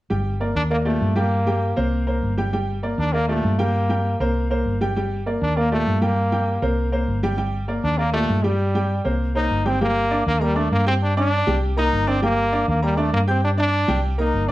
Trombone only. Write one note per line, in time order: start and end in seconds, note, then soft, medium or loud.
0.56 0.63 D4 loud
0.71 0.78 A#3 medium
0.86 1.19 A3 medium
1.17 1.77 A#3 medium
2.99 3.14 D4 medium
3.13 3.27 A#3 loud
3.28 3.60 A3 medium
3.59 4.20 A#3 medium
5.42 5.58 D4 medium
5.57 5.71 A#3 medium
5.72 6.05 A3 loud
6.03 6.63 A#3 medium
7.84 7.99 D4 loud
7.98 8.12 A#3 loud
8.13 8.45 A3 loud
8.43 9.04 G3 medium
9.37 9.68 D#4 loud
9.67 9.81 C4 medium
9.82 10.23 A#3 loud
10.27 10.44 A#3 loud
10.42 10.59 G3 loud
10.57 10.72 A3 medium
10.72 10.86 A#3 loud
10.88 10.94 C4 loud
11.03 11.16 D4 loud
11.18 11.59 D4 loud
11.78 12.09 D#4 loud
12.08 12.22 C4 loud
12.23 12.65 A#3 loud
12.69 12.82 A#3 medium
12.83 13.00 G3 medium
12.99 13.13 A3 medium
13.14 13.20 A#3 loud
13.29 13.43 C4 medium
13.44 13.51 D4 medium
13.59 14.01 D4 loud
14.19 14.52 D#4 medium